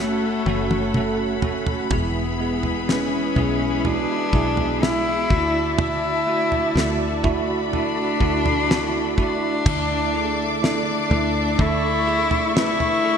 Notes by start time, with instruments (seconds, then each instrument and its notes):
Already playing: fingered electric bass F#1, tine electric piano A3, string section A4 C#5 F#5 B5
0.00 cello A3, tine electric piano C#4 F#4 A4
0.46 fingered electric bass F#1, tine electric piano A3 C#4 F#4 A4, high tom
0.71 high tom
0.94 tine electric piano A3 C#4 F#4 A4, mid tom
1.42 tine electric piano A3 C#4 F#4 A4, floor tom
1.67 floor tom
1.91 fingered electric bass E1, tine electric piano E3 G#3 B3 E4 G#4, string section G#4 B4 E5, kick, floor tom
1.95 cello B3
2.40 tine electric piano G#3 B3 E4 G#4
2.63 floor tom
2.88 tine electric piano G#3 B3 E4 B4, cello C#4, snare
3.36 fingered electric bass B1, tine electric piano G#3 B3 E4 G#4, floor tom
3.84 tine electric piano G#3 B3 E4 F#4, cello D4, floor tom
4.33 fingered electric bass B1, tine electric piano G#3 B3 E4 G#4, kick
4.57 floor tom
4.82 tine electric piano G#3 B3 E4 G#4, cello E4, snare
5.29 fingered electric bass D2, tine electric piano D3 A3 D4 E4 F#4, string section F#4 D5 A5, kick
5.79 cello E4, floor tom
6.27 tine electric piano A3 D4 E4 F#4
6.52 floor tom
6.75 fingered electric bass D2, tine electric piano A3 D4 E4 A4, snare
7.23 tine electric piano A3 D4 E4 F#4, string section B5, kick, floor tom
7.73 tine electric piano A3 D4 E4 F#4, cello D4, floor tom
8.20 fingered electric bass D2, tine electric piano A3 D4 E4 F#4, kick
8.46 floor tom
8.68 tine electric piano A3 D4 E4 F#4, snare
9.17 tine electric piano A3 D4 E4 F#4, cello D4, kick
9.65 fingered electric bass D2, tine electric piano D3 A3 D4 E4 A4, string section A3 D5 E5 D6, kick, floor tom, crash
10.13 tine electric piano A3 D4 E4 G#4
10.62 tine electric piano A3 D4 E4 A4, cello D4, snare
11.09 fingered electric bass D2, tine electric piano A3 D4 E4 A4, floor tom
11.56 fingered electric bass D2, tine electric piano A3 D4 E4 A4, string section C#6, kick, floor tom
11.61 cello E4
12.05 tine electric piano A3 D4 E4 G#4
12.31 floor tom
12.54 tine electric piano A3 D4 E4 B4, cello E4, snare
12.80 floor tom
13.03 tine electric piano A3 D4 E4 A4